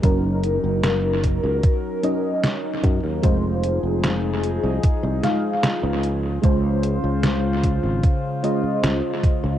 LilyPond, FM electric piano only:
\new Staff \with { instrumentName = "FM electric piano" } { \time 4/4 \key des \major \tempo 4 = 75 <ges des' ees' bes'>2~ <ges des' ees' bes'>8 <ges des' ees' ees''>8 r4 | <aes ees' f' c''>2~ <aes ees' f' c''>8 <aes ees' f' f''>8 r4 | <aes des' f' c''>2~ <aes des' f' c''>8 <aes des' f' ees''>8 r4 | }